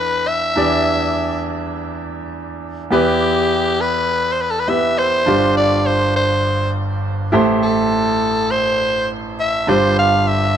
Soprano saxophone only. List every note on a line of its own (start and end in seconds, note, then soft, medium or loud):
0.00 0.29 B4 medium
0.28 1.45 E5 loud
2.92 3.82 G4 medium
3.81 4.34 B4 loud
4.33 4.43 C5 medium
4.41 4.52 B4 medium
4.50 4.61 A4 medium
4.60 4.70 B4 medium
4.69 5.00 E5 loud
4.98 5.56 C5 loud
5.57 5.88 D5 medium
5.86 6.16 C5 medium
6.16 6.71 C5 medium
7.63 8.53 A4 medium
8.51 9.10 C5 loud
9.40 9.70 E5 medium
9.69 9.98 C5 medium
9.99 10.29 F5 loud
10.28 10.57 E5 loud